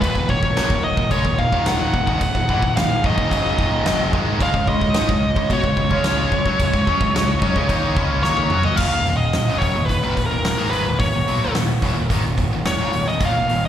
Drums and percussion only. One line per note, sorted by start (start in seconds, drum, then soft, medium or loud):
0.02 kick medium
0.02 crash medium
0.15 kick medium
0.29 kick medium
0.43 kick medium
0.57 snare loud
0.57 crash medium
0.70 kick loud
0.97 kick loud
1.11 kick loud
1.11 crash medium
1.25 kick medium
1.39 kick medium
1.53 kick medium
1.66 snare loud
1.66 crash medium
1.94 kick medium
2.07 kick medium
2.21 kick loud
2.21 crash medium
2.35 kick medium
2.49 kick medium
2.62 kick medium
2.77 snare loud
2.77 crash medium
3.04 kick loud
3.18 kick medium
3.31 kick medium
3.31 crash medium
3.59 kick loud
3.86 snare loud
3.86 crash medium
4.13 kick loud
4.41 kick loud
4.41 crash medium
4.54 kick medium
4.67 kick medium
4.81 kick medium
4.94 snare loud
4.94 crash medium
5.09 kick loud
5.36 kick loud
5.50 kick medium
5.50 crash medium
5.64 kick medium
5.77 kick medium
5.91 kick medium
6.04 snare loud
6.04 crash medium
6.32 kick medium
6.46 kick medium
6.60 kick loud
6.60 crash medium
6.74 kick medium
6.87 kick medium
7.01 kick loud
7.16 snare loud
7.16 crash medium
7.42 kick loud
7.56 kick medium
7.69 kick medium
7.69 crash medium
7.97 kick loud
8.24 snare medium
8.37 high tom medium
8.50 mid tom loud
8.63 floor tom medium
8.77 kick loud
8.77 crash loud
9.06 open hi-hat soft
9.33 snare loud
9.33 open hi-hat medium
9.62 kick medium
9.62 open hi-hat medium
9.89 kick medium
9.89 open hi-hat medium
10.17 kick medium
10.17 open hi-hat medium
10.45 snare loud
10.45 open hi-hat medium
10.73 open hi-hat medium
11.00 kick loud
11.00 open hi-hat medium
11.28 open hi-hat medium
11.55 snare loud
11.55 open hi-hat medium
11.82 kick medium
11.82 open hi-hat medium
12.10 kick medium
12.10 open hi-hat medium
12.38 kick medium
12.38 open hi-hat soft
12.65 snare loud
12.65 open hi-hat medium
12.93 open hi-hat medium
13.20 kick loud
13.20 open hi-hat medium
13.49 open hi-hat medium